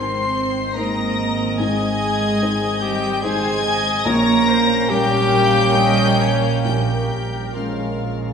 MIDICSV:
0, 0, Header, 1, 10, 480
1, 0, Start_track
1, 0, Tempo, 828729
1, 924, Time_signature, 3, 2, 24, 8
1, 2833, Tempo, 854701
1, 3313, Tempo, 899550
1, 4693, End_track
2, 0, Start_track
2, 0, Title_t, "Violin section"
2, 0, Program_c, 0, 48
2, 0, Note_on_c, 0, 96, 90
2, 446, Note_on_c, 0, 94, 106
2, 447, Note_off_c, 0, 96, 0
2, 925, Note_off_c, 0, 94, 0
2, 928, Note_on_c, 0, 92, 112
2, 1622, Note_off_c, 0, 92, 0
2, 1635, Note_on_c, 0, 91, 110
2, 1871, Note_off_c, 0, 91, 0
2, 1873, Note_on_c, 0, 92, 127
2, 2353, Note_off_c, 0, 92, 0
2, 2363, Note_on_c, 0, 94, 127
2, 2837, Note_on_c, 0, 91, 127
2, 2841, Note_off_c, 0, 94, 0
2, 3786, Note_off_c, 0, 91, 0
2, 3792, Note_on_c, 0, 91, 86
2, 4263, Note_off_c, 0, 91, 0
2, 4274, Note_on_c, 0, 89, 64
2, 4693, Note_off_c, 0, 89, 0
2, 4693, End_track
3, 0, Start_track
3, 0, Title_t, "Flute"
3, 0, Program_c, 1, 73
3, 0, Note_on_c, 1, 84, 87
3, 427, Note_on_c, 1, 82, 87
3, 436, Note_off_c, 1, 84, 0
3, 910, Note_off_c, 1, 82, 0
3, 913, Note_on_c, 1, 80, 85
3, 1631, Note_on_c, 1, 79, 91
3, 1640, Note_off_c, 1, 80, 0
3, 1871, Note_on_c, 1, 80, 108
3, 1880, Note_off_c, 1, 79, 0
3, 2348, Note_on_c, 1, 82, 113
3, 2357, Note_off_c, 1, 80, 0
3, 2832, Note_on_c, 1, 79, 127
3, 2841, Note_off_c, 1, 82, 0
3, 3629, Note_off_c, 1, 79, 0
3, 3782, Note_on_c, 1, 79, 67
3, 4246, Note_off_c, 1, 79, 0
3, 4267, Note_on_c, 1, 77, 49
3, 4693, Note_off_c, 1, 77, 0
3, 4693, End_track
4, 0, Start_track
4, 0, Title_t, "Violin section"
4, 0, Program_c, 2, 48
4, 0, Note_on_c, 2, 84, 86
4, 438, Note_on_c, 2, 82, 82
4, 444, Note_off_c, 2, 84, 0
4, 918, Note_on_c, 2, 80, 84
4, 921, Note_off_c, 2, 82, 0
4, 1631, Note_off_c, 2, 80, 0
4, 1637, Note_on_c, 2, 79, 91
4, 1872, Note_off_c, 2, 79, 0
4, 1875, Note_on_c, 2, 80, 110
4, 2344, Note_off_c, 2, 80, 0
4, 2355, Note_on_c, 2, 82, 111
4, 2837, Note_off_c, 2, 82, 0
4, 2838, Note_on_c, 2, 79, 119
4, 3785, Note_off_c, 2, 79, 0
4, 3792, Note_on_c, 2, 79, 66
4, 4263, Note_off_c, 2, 79, 0
4, 4277, Note_on_c, 2, 77, 51
4, 4693, Note_off_c, 2, 77, 0
4, 4693, End_track
5, 0, Start_track
5, 0, Title_t, "Viola section"
5, 0, Program_c, 3, 48
5, 0, Note_on_c, 3, 70, 66
5, 180, Note_off_c, 3, 70, 0
5, 202, Note_on_c, 3, 72, 66
5, 446, Note_off_c, 3, 72, 0
5, 448, Note_on_c, 3, 75, 90
5, 1871, Note_on_c, 3, 72, 106
5, 1873, Note_off_c, 3, 75, 0
5, 2110, Note_off_c, 3, 72, 0
5, 2111, Note_on_c, 3, 75, 110
5, 2347, Note_off_c, 3, 75, 0
5, 2356, Note_on_c, 3, 73, 110
5, 2595, Note_off_c, 3, 73, 0
5, 2600, Note_on_c, 3, 72, 95
5, 2839, Note_off_c, 3, 72, 0
5, 2840, Note_on_c, 3, 70, 90
5, 3317, Note_off_c, 3, 70, 0
5, 3319, Note_on_c, 3, 75, 100
5, 3552, Note_off_c, 3, 75, 0
5, 3553, Note_on_c, 3, 73, 78
5, 3789, Note_on_c, 3, 70, 78
5, 3791, Note_off_c, 3, 73, 0
5, 4693, Note_off_c, 3, 70, 0
5, 4693, End_track
6, 0, Start_track
6, 0, Title_t, "Clarinet"
6, 0, Program_c, 4, 71
6, 0, Note_on_c, 4, 72, 82
6, 438, Note_on_c, 4, 70, 80
6, 446, Note_off_c, 4, 72, 0
6, 921, Note_on_c, 4, 68, 101
6, 930, Note_off_c, 4, 70, 0
6, 1634, Note_on_c, 4, 67, 105
6, 1643, Note_off_c, 4, 68, 0
6, 1866, Note_off_c, 4, 67, 0
6, 1869, Note_on_c, 4, 68, 100
6, 2351, Note_on_c, 4, 70, 113
6, 2360, Note_off_c, 4, 68, 0
6, 2837, Note_on_c, 4, 67, 127
6, 2845, Note_off_c, 4, 70, 0
6, 3631, Note_off_c, 4, 67, 0
6, 3792, Note_on_c, 4, 67, 73
6, 4265, Note_on_c, 4, 65, 54
6, 4273, Note_off_c, 4, 67, 0
6, 4693, Note_off_c, 4, 65, 0
6, 4693, End_track
7, 0, Start_track
7, 0, Title_t, "Felt piano"
7, 0, Program_c, 5, 0
7, 0, Control_c, 5, 64, 127
7, 0, Note_on_c, 5, 32, 53
7, 0, Note_on_c, 5, 44, 60
7, 0, Note_on_c, 5, 56, 47
7, 0, Note_on_c, 5, 63, 42
7, 0, Note_on_c, 5, 72, 54
7, 422, Note_off_c, 5, 56, 0
7, 424, Note_off_c, 5, 63, 0
7, 426, Note_off_c, 5, 72, 0
7, 446, Note_on_c, 5, 56, 52
7, 449, Note_on_c, 5, 63, 54
7, 453, Note_on_c, 5, 72, 55
7, 901, Note_off_c, 5, 32, 0
7, 902, Note_off_c, 5, 44, 0
7, 902, Note_off_c, 5, 56, 0
7, 904, Note_off_c, 5, 63, 0
7, 905, Note_off_c, 5, 72, 0
7, 926, Note_on_c, 5, 32, 65
7, 926, Note_on_c, 5, 44, 80
7, 934, Control_c, 5, 64, 0
7, 1020, Control_c, 5, 64, 127
7, 1403, Note_on_c, 5, 60, 61
7, 1405, Note_on_c, 5, 63, 61
7, 1407, Note_on_c, 5, 72, 68
7, 1850, Note_off_c, 5, 60, 0
7, 1851, Note_off_c, 5, 63, 0
7, 1852, Note_off_c, 5, 72, 0
7, 1875, Note_on_c, 5, 56, 65
7, 1878, Note_on_c, 5, 63, 65
7, 1880, Note_on_c, 5, 72, 71
7, 2329, Note_off_c, 5, 32, 0
7, 2329, Note_off_c, 5, 44, 0
7, 2330, Note_off_c, 5, 56, 0
7, 2332, Note_off_c, 5, 63, 0
7, 2333, Note_off_c, 5, 72, 0
7, 2349, Note_on_c, 5, 34, 89
7, 2353, Note_on_c, 5, 46, 91
7, 2362, Control_c, 5, 64, 0
7, 2466, Control_c, 5, 64, 127
7, 2835, Note_on_c, 5, 58, 68
7, 2840, Note_on_c, 5, 61, 66
7, 2840, Note_on_c, 5, 70, 76
7, 3293, Note_off_c, 5, 58, 0
7, 3295, Note_off_c, 5, 61, 0
7, 3295, Note_off_c, 5, 70, 0
7, 3316, Note_on_c, 5, 58, 63
7, 3320, Note_on_c, 5, 61, 60
7, 3321, Note_on_c, 5, 70, 66
7, 3767, Note_off_c, 5, 34, 0
7, 3769, Note_off_c, 5, 46, 0
7, 3769, Note_off_c, 5, 58, 0
7, 3771, Note_off_c, 5, 61, 0
7, 3771, Note_off_c, 5, 70, 0
7, 3796, Note_on_c, 5, 34, 58
7, 3796, Note_on_c, 5, 46, 61
7, 3800, Control_c, 5, 64, 0
7, 3895, Control_c, 5, 64, 127
7, 4273, Note_on_c, 5, 56, 44
7, 4276, Note_on_c, 5, 61, 40
7, 4277, Note_on_c, 5, 70, 50
7, 4693, Note_off_c, 5, 34, 0
7, 4693, Note_off_c, 5, 46, 0
7, 4693, Note_off_c, 5, 56, 0
7, 4693, Note_off_c, 5, 61, 0
7, 4693, Note_off_c, 5, 70, 0
7, 4693, End_track
8, 0, Start_track
8, 0, Title_t, "French horn section"
8, 0, Program_c, 6, 60
8, 0, Note_on_c, 6, 51, 65
8, 0, Note_on_c, 6, 60, 65
8, 2325, Note_off_c, 6, 51, 0
8, 2327, Note_off_c, 6, 60, 0
8, 2353, Note_on_c, 6, 61, 115
8, 2356, Note_on_c, 6, 58, 108
8, 4181, Note_off_c, 6, 58, 0
8, 4181, Note_off_c, 6, 61, 0
8, 4271, Note_on_c, 6, 56, 63
8, 4273, Note_on_c, 6, 61, 68
8, 4693, Note_off_c, 6, 56, 0
8, 4693, Note_off_c, 6, 61, 0
8, 4693, End_track
9, 0, Start_track
9, 0, Title_t, "Cello section"
9, 0, Program_c, 7, 48
9, 0, Note_on_c, 7, 60, 81
9, 441, Note_off_c, 7, 60, 0
9, 442, Note_on_c, 7, 58, 78
9, 914, Note_off_c, 7, 58, 0
9, 922, Note_on_c, 7, 56, 91
9, 1633, Note_off_c, 7, 56, 0
9, 1637, Note_on_c, 7, 55, 100
9, 1872, Note_off_c, 7, 55, 0
9, 1872, Note_on_c, 7, 56, 100
9, 2352, Note_off_c, 7, 56, 0
9, 2354, Note_on_c, 7, 58, 124
9, 2827, Note_off_c, 7, 58, 0
9, 2835, Note_on_c, 7, 55, 108
9, 3784, Note_off_c, 7, 55, 0
9, 3791, Note_on_c, 7, 55, 73
9, 4262, Note_off_c, 7, 55, 0
9, 4273, Note_on_c, 7, 53, 54
9, 4693, Note_off_c, 7, 53, 0
9, 4693, End_track
10, 0, Start_track
10, 0, Title_t, "Double bass section"
10, 0, Program_c, 8, 48
10, 0, Note_on_c, 8, 32, 72
10, 2326, Note_off_c, 8, 32, 0
10, 2348, Note_on_c, 8, 34, 96
10, 4693, Note_off_c, 8, 34, 0
10, 4693, End_track
0, 0, End_of_file